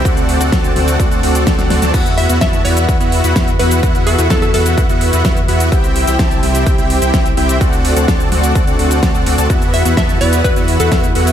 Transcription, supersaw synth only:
X:1
M:4/4
L:1/16
Q:1/4=127
K:Em
V:1 name="Supersaw synth"
[CFAdf]3 [CFAdf] [FAda]2 [CFAdf]2 [CFAdf] [CFAdf] [CFAdf]2 [CFAda] [CFAdf] [CFAdf] [CFAda] | [B,EFf]3 [B,EFef] [B,EFea]2 [B,EFef]2 [B,EFef] [B,EFef]2 [B,EFef] [B,EFef] z [B,EFef]2 | [B,EFef]3 [B,EFef] [B,EFea]2 [B,EFef]2 [B,EFef] [B,EFef]2 [B,EFef] [B,Ee] z [B,EFef]2 | [CEGeg]3 [CEGeg] [CEGea]2 [CEGeg]2 [CEGeg] [CEGeg]2 [CEGeg] [CEGeg] z [CEGeg]2 |
[CFAf]3 [CFAdf] [CFAa]2 [CFAdf]2 [CFAdf] [CFAdf] [CFAdf]2 [CFAda] [CFAdf] [CFAdf] [CFAda] | [B,EFef]3 [B,EFef] [B,EFa]2 [B,EFef]2 [B,EFef] [B,EFef]2 [B,EFef] [B,EFef] z [B,EFef]2 |]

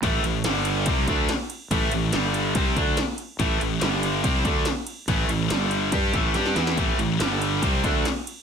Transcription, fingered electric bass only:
X:1
M:4/4
L:1/8
Q:1/4=142
K:Am
V:1 name="Fingered electric bass" clef=bass
A,,, A,,, G,,,2 C,, D,, z2 | A,,, A,,, G,,,2 C,, D,, z2 | A,,, A,,, G,,,2 C,, D,, z2 | A,,, A,,, G,,,2 G,, A,,, G,, E,, |
A,,, A,,, G,,,2 C,, D,, z2 |]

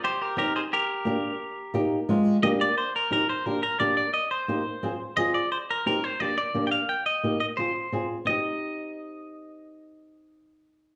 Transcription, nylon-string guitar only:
X:1
M:4/4
L:1/8
Q:1/4=175
K:Cm
V:1 name="Nylon-string guitar"
z2 [CEG] z3 [B,DG] z | z2 [B,EG] z [A,CF]2 [B,DG] z | z2 [CEG] z [B,DG] z [B,DG] z | z2 [B,EG] z [CFA] z [CFA] z |
z2 [CEG] z [B,DG] z [B,DG] z | z2 [B,EG] z [CFA] z [CFA] z | [CEG]8- | [CEG]8 |]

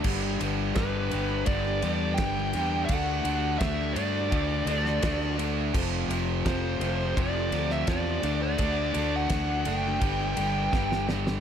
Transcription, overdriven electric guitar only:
X:1
M:4/4
L:1/8
Q:1/4=84
K:G
V:1 name="Overdriven electric guitar" clef=bass
[G,,D,G,] [G,,D,G,] [G,,D,G,] [G,,D,G,] [G,,D,G,] [G,,D,G,] [G,,D,G,] [G,,D,G,] | [D,A,D] [D,A,D] [D,A,D] [D,A,D] [D,A,D] [D,A,D] [D,A,D] [D,A,D] | [=F,,C,=F,] [F,,C,F,] [F,,C,F,] [F,,C,F,] [F,,C,F,] [F,,C,F,] [F,,C,F,] [D,A,D] | [D,A,D] [D,A,D] [D,A,D] [D,A,D] [G,,D,G,] [G,,D,G,] [G,,D,G,] [G,,D,G,] |]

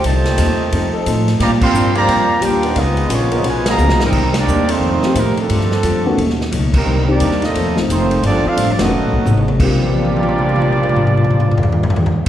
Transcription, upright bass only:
X:1
M:4/4
L:1/8
Q:"Swing" 1/4=176
K:Bb
V:1 name="Upright bass" clef=bass
C,,2 E,, z F,, z A,,2 | B,,2 G,,2 F,,2 E,,2 | _D,,2 B,,,2 _C,,2 (3D,, C,, _A,,, | C,,2 E,,2 F,, z A,, z |
G,,2 F,,2 ^D,,2 _D,,2 | C,,2 E,,2 (3F,, E,, C,, F,,,2 | G,,, z (3A,,, G,,, F,,, (3=B,,, A,,, ^F,,, _A,,,2 | B,,,8- |
B,,,8 |]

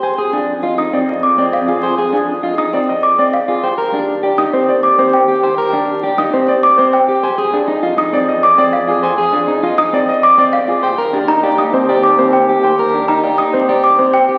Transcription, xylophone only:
X:1
M:3/4
L:1/16
Q:1/4=100
K:Fdor
V:1 name="Xylophone"
z4 z e' z2 d' z f z | z4 z e' z2 d' z f z | z4 z e' z2 d' z g z | z4 z e' z2 d' z g z |
z4 z e' z2 d' z f z | z4 z e' z2 d' z f z | z3 b z e' z2 d' z g z | z3 b z e' z2 d' z g z |]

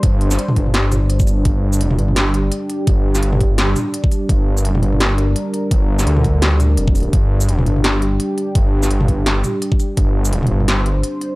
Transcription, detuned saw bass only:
X:1
M:4/4
L:1/8
Q:"Swing 16ths" 1/4=169
K:Gm
V:1 name="Detuned saw bass" clef=bass
G,,,2 z G,,,4- G,,, | G,,,3 G,,,3 z2 | G,,,2 G,,,3 z3 | G,,,3 G,,,3 z2 |
G,,,2 D,,4 F,,,2 | G,,,3 G,,,3 z2 | G,,,2 G,,,3 z3 | G,,,3 G,,,3 z2 |]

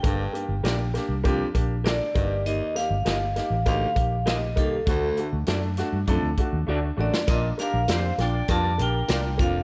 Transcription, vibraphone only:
X:1
M:4/4
L:1/8
Q:1/4=99
K:Bb
V:1 name="Vibraphone"
g3 z3 d2 | e f3 f2 e A- | A z6 d | e f2 g a g2 f |]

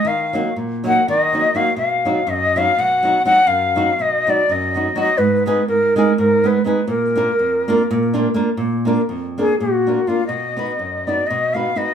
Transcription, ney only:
X:1
M:7/8
L:1/8
Q:1/4=123
K:none
V:1 name="Ney"
f2 z _g _e2 f | f2 ^d f ^f2 f | f2 ^d =d ^d2 d | _c c _B B B c c |
_B6 z | z3 _A _G2 F | ^d3 =d ^d f d |]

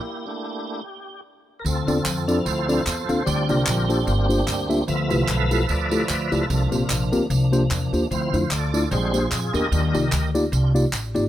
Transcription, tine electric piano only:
X:1
M:4/4
L:1/16
Q:"Swing" 1/4=149
K:Dm
V:1 name="Tine electric piano"
z16 | z2 [CDFAd] z3 [CDFAd] z3 [CDFAd] z3 [CDFAf] z | z2 [B,DFGd] z3 [B,DFGc] z3 [B,DFGc] z3 [B,DFGe] z | z2 [A,EFG=B] z3 [A,EFGA] z3 [A,EFGA] z3 [A,EFGd] z |
z2 [B,CFGc] z3 [B,CFGB] z3 [B,DFGc] z3 [B,DFGc] z | z2 [A,DEFc] z3 [A,DEFd] z3 [B,DG_Ac] z3 [B,DGAB] z | z2 [B,_EFGd] z3 [B,EFGd] z3 [B,EFGd] z3 [B,EFGd] z |]
V:2 name="Tine electric piano" clef=bass
z16 | D,6 z8 z2 | D,6 z8 z2 | D,6 z8 z2 |
C,6 z2 C,6 z2 | D,6 z2 B,,6 z2 | _E,6 z8 z2 |]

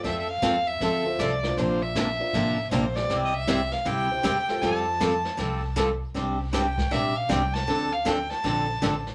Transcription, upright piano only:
X:1
M:4/4
L:1/8
Q:"Swing" 1/4=157
K:F
V:1 name="Upright piano"
z4 z [CFAc] z [DFBc]- | [DFBc]2 z [DFBc] z3 [CEGc] | z4 z [CEGc] z [CFGA]- | [CFGA]2 z6 |
z8 | z8 |]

